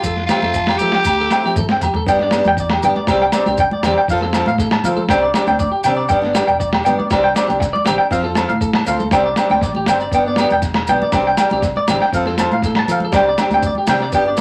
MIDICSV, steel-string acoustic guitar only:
0, 0, Header, 1, 3, 480
1, 0, Start_track
1, 0, Tempo, 502934
1, 42, Time_signature, 4, 2, 24, 8
1, 13751, End_track
2, 0, Start_track
2, 0, Title_t, "Steel-string acoustic guitar"
2, 0, Program_c, 0, 25
2, 280, Note_on_c, 0, 53, 59
2, 287, Note_on_c, 0, 57, 61
2, 298, Note_on_c, 0, 60, 61
2, 305, Note_on_c, 0, 67, 69
2, 388, Note_off_c, 0, 67, 0
2, 401, Note_off_c, 0, 60, 0
2, 404, Note_off_c, 0, 53, 0
2, 407, Note_off_c, 0, 57, 0
2, 413, Note_on_c, 0, 60, 47
2, 426, Note_on_c, 0, 57, 41
2, 553, Note_off_c, 0, 60, 0
2, 560, Note_off_c, 0, 57, 0
2, 766, Note_on_c, 0, 53, 57
2, 774, Note_on_c, 0, 57, 55
2, 786, Note_on_c, 0, 60, 59
2, 795, Note_on_c, 0, 67, 58
2, 912, Note_off_c, 0, 53, 0
2, 916, Note_off_c, 0, 57, 0
2, 922, Note_off_c, 0, 60, 0
2, 927, Note_off_c, 0, 67, 0
2, 1242, Note_on_c, 0, 53, 57
2, 1251, Note_on_c, 0, 57, 61
2, 1264, Note_on_c, 0, 60, 65
2, 1268, Note_on_c, 0, 67, 69
2, 1357, Note_off_c, 0, 67, 0
2, 1367, Note_off_c, 0, 53, 0
2, 1368, Note_on_c, 0, 67, 64
2, 1370, Note_off_c, 0, 60, 0
2, 1372, Note_off_c, 0, 57, 0
2, 1381, Note_on_c, 0, 60, 56
2, 1397, Note_on_c, 0, 57, 49
2, 1513, Note_off_c, 0, 67, 0
2, 1520, Note_off_c, 0, 60, 0
2, 1528, Note_off_c, 0, 57, 0
2, 1619, Note_on_c, 0, 60, 55
2, 1637, Note_on_c, 0, 57, 51
2, 1759, Note_off_c, 0, 60, 0
2, 1768, Note_off_c, 0, 57, 0
2, 1969, Note_on_c, 0, 59, 81
2, 1983, Note_on_c, 0, 62, 92
2, 1993, Note_on_c, 0, 67, 89
2, 2085, Note_off_c, 0, 67, 0
2, 2092, Note_off_c, 0, 59, 0
2, 2096, Note_on_c, 0, 67, 65
2, 2100, Note_off_c, 0, 62, 0
2, 2124, Note_on_c, 0, 62, 51
2, 2214, Note_off_c, 0, 67, 0
2, 2215, Note_on_c, 0, 59, 72
2, 2223, Note_off_c, 0, 62, 0
2, 2235, Note_on_c, 0, 62, 83
2, 2241, Note_on_c, 0, 67, 82
2, 2360, Note_off_c, 0, 59, 0
2, 2369, Note_off_c, 0, 62, 0
2, 2373, Note_off_c, 0, 67, 0
2, 2701, Note_on_c, 0, 59, 65
2, 2719, Note_on_c, 0, 62, 70
2, 2726, Note_on_c, 0, 67, 79
2, 2843, Note_off_c, 0, 59, 0
2, 2852, Note_off_c, 0, 62, 0
2, 2856, Note_off_c, 0, 67, 0
2, 2946, Note_on_c, 0, 55, 87
2, 2955, Note_on_c, 0, 60, 85
2, 2960, Note_on_c, 0, 62, 91
2, 2970, Note_on_c, 0, 67, 102
2, 3086, Note_off_c, 0, 55, 0
2, 3091, Note_off_c, 0, 60, 0
2, 3093, Note_off_c, 0, 62, 0
2, 3098, Note_off_c, 0, 67, 0
2, 3179, Note_on_c, 0, 55, 74
2, 3192, Note_on_c, 0, 60, 82
2, 3201, Note_on_c, 0, 62, 74
2, 3210, Note_on_c, 0, 67, 83
2, 3292, Note_off_c, 0, 67, 0
2, 3299, Note_off_c, 0, 55, 0
2, 3303, Note_on_c, 0, 67, 63
2, 3306, Note_off_c, 0, 60, 0
2, 3310, Note_off_c, 0, 62, 0
2, 3324, Note_on_c, 0, 62, 61
2, 3338, Note_on_c, 0, 60, 57
2, 3444, Note_off_c, 0, 67, 0
2, 3454, Note_off_c, 0, 62, 0
2, 3462, Note_off_c, 0, 60, 0
2, 3663, Note_on_c, 0, 55, 69
2, 3672, Note_on_c, 0, 60, 69
2, 3683, Note_on_c, 0, 62, 78
2, 3696, Note_on_c, 0, 67, 86
2, 3805, Note_off_c, 0, 55, 0
2, 3810, Note_off_c, 0, 60, 0
2, 3816, Note_off_c, 0, 62, 0
2, 3822, Note_off_c, 0, 67, 0
2, 3916, Note_on_c, 0, 53, 84
2, 3922, Note_on_c, 0, 60, 90
2, 3925, Note_on_c, 0, 65, 94
2, 3935, Note_on_c, 0, 69, 94
2, 4015, Note_off_c, 0, 69, 0
2, 4027, Note_on_c, 0, 69, 57
2, 4028, Note_off_c, 0, 53, 0
2, 4031, Note_off_c, 0, 60, 0
2, 4033, Note_off_c, 0, 65, 0
2, 4053, Note_on_c, 0, 60, 48
2, 4141, Note_off_c, 0, 60, 0
2, 4141, Note_on_c, 0, 53, 71
2, 4142, Note_off_c, 0, 69, 0
2, 4152, Note_on_c, 0, 60, 77
2, 4163, Note_on_c, 0, 65, 77
2, 4169, Note_on_c, 0, 69, 81
2, 4285, Note_off_c, 0, 53, 0
2, 4291, Note_off_c, 0, 60, 0
2, 4296, Note_off_c, 0, 65, 0
2, 4299, Note_off_c, 0, 69, 0
2, 4630, Note_on_c, 0, 53, 65
2, 4642, Note_on_c, 0, 60, 68
2, 4646, Note_on_c, 0, 65, 75
2, 4659, Note_on_c, 0, 69, 74
2, 4770, Note_off_c, 0, 53, 0
2, 4776, Note_off_c, 0, 60, 0
2, 4778, Note_off_c, 0, 65, 0
2, 4785, Note_off_c, 0, 69, 0
2, 4862, Note_on_c, 0, 55, 90
2, 4871, Note_on_c, 0, 60, 99
2, 4877, Note_on_c, 0, 62, 100
2, 5006, Note_off_c, 0, 55, 0
2, 5011, Note_off_c, 0, 60, 0
2, 5014, Note_off_c, 0, 62, 0
2, 5100, Note_on_c, 0, 55, 79
2, 5111, Note_on_c, 0, 60, 78
2, 5129, Note_on_c, 0, 62, 81
2, 5206, Note_off_c, 0, 62, 0
2, 5218, Note_on_c, 0, 62, 64
2, 5221, Note_off_c, 0, 55, 0
2, 5227, Note_off_c, 0, 60, 0
2, 5246, Note_on_c, 0, 60, 57
2, 5363, Note_off_c, 0, 62, 0
2, 5377, Note_off_c, 0, 60, 0
2, 5585, Note_on_c, 0, 55, 77
2, 5599, Note_on_c, 0, 60, 80
2, 5611, Note_on_c, 0, 62, 88
2, 5728, Note_off_c, 0, 55, 0
2, 5735, Note_off_c, 0, 60, 0
2, 5741, Note_off_c, 0, 62, 0
2, 5816, Note_on_c, 0, 55, 89
2, 5830, Note_on_c, 0, 59, 91
2, 5838, Note_on_c, 0, 62, 95
2, 5921, Note_off_c, 0, 62, 0
2, 5933, Note_on_c, 0, 62, 66
2, 5940, Note_off_c, 0, 55, 0
2, 5947, Note_off_c, 0, 59, 0
2, 5963, Note_on_c, 0, 59, 49
2, 6053, Note_on_c, 0, 55, 72
2, 6057, Note_off_c, 0, 62, 0
2, 6060, Note_off_c, 0, 59, 0
2, 6072, Note_on_c, 0, 59, 76
2, 6088, Note_on_c, 0, 62, 79
2, 6203, Note_off_c, 0, 55, 0
2, 6212, Note_off_c, 0, 59, 0
2, 6220, Note_off_c, 0, 62, 0
2, 6525, Note_on_c, 0, 55, 66
2, 6548, Note_on_c, 0, 59, 78
2, 6560, Note_on_c, 0, 62, 78
2, 6679, Note_off_c, 0, 55, 0
2, 6690, Note_off_c, 0, 59, 0
2, 6697, Note_off_c, 0, 62, 0
2, 6786, Note_on_c, 0, 55, 91
2, 6798, Note_on_c, 0, 60, 105
2, 6808, Note_on_c, 0, 62, 102
2, 6930, Note_off_c, 0, 55, 0
2, 6935, Note_off_c, 0, 60, 0
2, 6941, Note_off_c, 0, 62, 0
2, 7012, Note_on_c, 0, 55, 69
2, 7030, Note_on_c, 0, 60, 72
2, 7041, Note_on_c, 0, 62, 79
2, 7120, Note_off_c, 0, 62, 0
2, 7132, Note_on_c, 0, 62, 61
2, 7139, Note_off_c, 0, 55, 0
2, 7148, Note_off_c, 0, 60, 0
2, 7164, Note_on_c, 0, 60, 55
2, 7281, Note_off_c, 0, 62, 0
2, 7297, Note_off_c, 0, 60, 0
2, 7487, Note_on_c, 0, 55, 72
2, 7504, Note_on_c, 0, 60, 70
2, 7517, Note_on_c, 0, 62, 72
2, 7640, Note_off_c, 0, 55, 0
2, 7649, Note_off_c, 0, 60, 0
2, 7655, Note_off_c, 0, 62, 0
2, 7735, Note_on_c, 0, 53, 86
2, 7743, Note_on_c, 0, 60, 88
2, 7750, Note_on_c, 0, 65, 92
2, 7853, Note_on_c, 0, 69, 62
2, 7858, Note_off_c, 0, 65, 0
2, 7861, Note_off_c, 0, 53, 0
2, 7865, Note_off_c, 0, 60, 0
2, 7870, Note_on_c, 0, 65, 56
2, 7884, Note_on_c, 0, 60, 50
2, 7966, Note_on_c, 0, 53, 73
2, 7969, Note_off_c, 0, 60, 0
2, 7978, Note_off_c, 0, 69, 0
2, 7981, Note_on_c, 0, 60, 75
2, 7983, Note_off_c, 0, 65, 0
2, 7994, Note_on_c, 0, 65, 78
2, 7997, Note_on_c, 0, 69, 80
2, 8120, Note_off_c, 0, 53, 0
2, 8127, Note_off_c, 0, 60, 0
2, 8134, Note_off_c, 0, 65, 0
2, 8136, Note_off_c, 0, 69, 0
2, 8457, Note_on_c, 0, 60, 75
2, 8470, Note_on_c, 0, 65, 71
2, 8475, Note_on_c, 0, 69, 73
2, 8605, Note_off_c, 0, 60, 0
2, 8612, Note_off_c, 0, 65, 0
2, 8614, Note_off_c, 0, 69, 0
2, 8697, Note_on_c, 0, 55, 89
2, 8710, Note_on_c, 0, 60, 87
2, 8716, Note_on_c, 0, 62, 101
2, 8845, Note_off_c, 0, 55, 0
2, 8852, Note_off_c, 0, 60, 0
2, 8855, Note_off_c, 0, 62, 0
2, 8934, Note_on_c, 0, 55, 67
2, 8949, Note_on_c, 0, 60, 76
2, 8963, Note_on_c, 0, 62, 85
2, 9050, Note_off_c, 0, 62, 0
2, 9060, Note_off_c, 0, 55, 0
2, 9062, Note_on_c, 0, 62, 66
2, 9067, Note_off_c, 0, 60, 0
2, 9095, Note_on_c, 0, 60, 51
2, 9206, Note_off_c, 0, 62, 0
2, 9223, Note_off_c, 0, 60, 0
2, 9417, Note_on_c, 0, 55, 70
2, 9433, Note_on_c, 0, 60, 77
2, 9443, Note_on_c, 0, 62, 72
2, 9565, Note_off_c, 0, 55, 0
2, 9573, Note_off_c, 0, 60, 0
2, 9578, Note_off_c, 0, 62, 0
2, 9671, Note_on_c, 0, 59, 86
2, 9677, Note_on_c, 0, 62, 86
2, 9766, Note_off_c, 0, 62, 0
2, 9777, Note_on_c, 0, 62, 61
2, 9788, Note_off_c, 0, 59, 0
2, 9804, Note_on_c, 0, 59, 53
2, 9897, Note_on_c, 0, 55, 80
2, 9899, Note_off_c, 0, 62, 0
2, 9906, Note_off_c, 0, 59, 0
2, 9918, Note_on_c, 0, 59, 74
2, 9929, Note_on_c, 0, 62, 77
2, 10045, Note_off_c, 0, 55, 0
2, 10055, Note_off_c, 0, 59, 0
2, 10061, Note_off_c, 0, 62, 0
2, 10373, Note_on_c, 0, 55, 65
2, 10394, Note_on_c, 0, 59, 72
2, 10405, Note_on_c, 0, 62, 77
2, 10522, Note_off_c, 0, 55, 0
2, 10532, Note_off_c, 0, 59, 0
2, 10538, Note_off_c, 0, 62, 0
2, 10612, Note_on_c, 0, 55, 87
2, 10625, Note_on_c, 0, 60, 88
2, 10630, Note_on_c, 0, 62, 99
2, 10761, Note_off_c, 0, 55, 0
2, 10767, Note_off_c, 0, 60, 0
2, 10770, Note_off_c, 0, 62, 0
2, 10863, Note_on_c, 0, 55, 77
2, 10890, Note_on_c, 0, 62, 74
2, 10970, Note_off_c, 0, 62, 0
2, 10982, Note_off_c, 0, 55, 0
2, 10982, Note_on_c, 0, 62, 68
2, 11011, Note_on_c, 0, 60, 51
2, 11124, Note_off_c, 0, 62, 0
2, 11139, Note_off_c, 0, 60, 0
2, 11356, Note_on_c, 0, 60, 72
2, 11364, Note_on_c, 0, 62, 78
2, 11492, Note_off_c, 0, 60, 0
2, 11496, Note_off_c, 0, 62, 0
2, 11576, Note_on_c, 0, 53, 79
2, 11586, Note_on_c, 0, 60, 88
2, 11591, Note_on_c, 0, 65, 91
2, 11600, Note_on_c, 0, 69, 95
2, 11684, Note_off_c, 0, 69, 0
2, 11695, Note_off_c, 0, 65, 0
2, 11695, Note_on_c, 0, 69, 62
2, 11698, Note_off_c, 0, 53, 0
2, 11703, Note_off_c, 0, 60, 0
2, 11707, Note_on_c, 0, 65, 53
2, 11725, Note_on_c, 0, 60, 51
2, 11815, Note_off_c, 0, 69, 0
2, 11816, Note_off_c, 0, 60, 0
2, 11817, Note_on_c, 0, 53, 75
2, 11821, Note_off_c, 0, 65, 0
2, 11828, Note_on_c, 0, 60, 77
2, 11840, Note_on_c, 0, 65, 74
2, 11843, Note_on_c, 0, 69, 75
2, 11961, Note_off_c, 0, 53, 0
2, 11967, Note_off_c, 0, 60, 0
2, 11973, Note_off_c, 0, 65, 0
2, 11974, Note_off_c, 0, 69, 0
2, 12286, Note_on_c, 0, 53, 69
2, 12298, Note_on_c, 0, 60, 76
2, 12305, Note_on_c, 0, 65, 67
2, 12317, Note_on_c, 0, 69, 81
2, 12435, Note_off_c, 0, 53, 0
2, 12441, Note_off_c, 0, 60, 0
2, 12444, Note_off_c, 0, 65, 0
2, 12451, Note_off_c, 0, 69, 0
2, 12521, Note_on_c, 0, 55, 97
2, 12536, Note_on_c, 0, 60, 93
2, 12542, Note_on_c, 0, 62, 91
2, 12545, Note_on_c, 0, 67, 93
2, 12672, Note_off_c, 0, 55, 0
2, 12679, Note_off_c, 0, 60, 0
2, 12682, Note_off_c, 0, 62, 0
2, 12684, Note_off_c, 0, 67, 0
2, 12764, Note_on_c, 0, 55, 76
2, 12777, Note_on_c, 0, 60, 70
2, 12784, Note_on_c, 0, 62, 88
2, 12792, Note_on_c, 0, 67, 85
2, 12881, Note_off_c, 0, 67, 0
2, 12889, Note_off_c, 0, 55, 0
2, 12893, Note_off_c, 0, 62, 0
2, 12893, Note_on_c, 0, 67, 69
2, 12896, Note_off_c, 0, 60, 0
2, 12904, Note_on_c, 0, 62, 65
2, 12921, Note_on_c, 0, 60, 51
2, 13035, Note_off_c, 0, 67, 0
2, 13041, Note_off_c, 0, 62, 0
2, 13050, Note_off_c, 0, 60, 0
2, 13240, Note_on_c, 0, 55, 73
2, 13254, Note_on_c, 0, 60, 77
2, 13262, Note_on_c, 0, 62, 75
2, 13269, Note_on_c, 0, 67, 78
2, 13389, Note_off_c, 0, 55, 0
2, 13396, Note_off_c, 0, 60, 0
2, 13400, Note_off_c, 0, 62, 0
2, 13404, Note_off_c, 0, 67, 0
2, 13479, Note_on_c, 0, 59, 86
2, 13494, Note_on_c, 0, 62, 91
2, 13503, Note_on_c, 0, 67, 100
2, 13590, Note_off_c, 0, 67, 0
2, 13601, Note_on_c, 0, 67, 64
2, 13604, Note_off_c, 0, 59, 0
2, 13612, Note_off_c, 0, 62, 0
2, 13632, Note_on_c, 0, 62, 50
2, 13712, Note_on_c, 0, 59, 76
2, 13716, Note_off_c, 0, 62, 0
2, 13723, Note_off_c, 0, 67, 0
2, 13751, Note_off_c, 0, 59, 0
2, 13751, End_track
3, 0, Start_track
3, 0, Title_t, "Muted steel-string acoustic guitar strokes"
3, 400, Note_on_c, 9, 29, 52
3, 495, Note_off_c, 9, 29, 0
3, 7757, Note_on_c, 9, 29, 96
3, 7853, Note_off_c, 9, 29, 0
3, 8443, Note_on_c, 9, 29, 64
3, 8539, Note_off_c, 9, 29, 0
3, 9658, Note_on_c, 9, 29, 78
3, 9754, Note_off_c, 9, 29, 0
3, 13751, End_track
0, 0, End_of_file